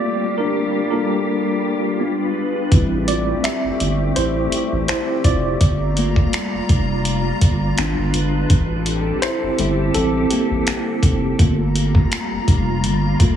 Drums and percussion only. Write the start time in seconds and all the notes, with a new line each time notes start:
2.72 kick, closed hi-hat
3.08 closed hi-hat
3.44 finger snap, closed hi-hat
3.80 closed hi-hat
4.16 closed hi-hat
4.52 closed hi-hat
4.88 finger snap, closed hi-hat
5.24 kick, closed hi-hat
5.61 kick, closed hi-hat
5.97 closed hi-hat
6.16 kick
6.33 finger snap, closed hi-hat
6.69 kick, closed hi-hat
7.05 closed hi-hat
7.41 kick, closed hi-hat
7.78 finger snap, closed hi-hat
8.14 closed hi-hat
8.50 kick, closed hi-hat
8.86 closed hi-hat
9.22 finger snap, closed hi-hat
9.59 closed hi-hat
9.94 closed hi-hat
10.31 closed hi-hat
10.67 finger snap, closed hi-hat
11.03 kick, closed hi-hat
11.39 kick, closed hi-hat
11.76 closed hi-hat
11.95 kick
12.12 finger snap, closed hi-hat
12.48 kick, closed hi-hat
12.84 closed hi-hat
13.20 kick, closed hi-hat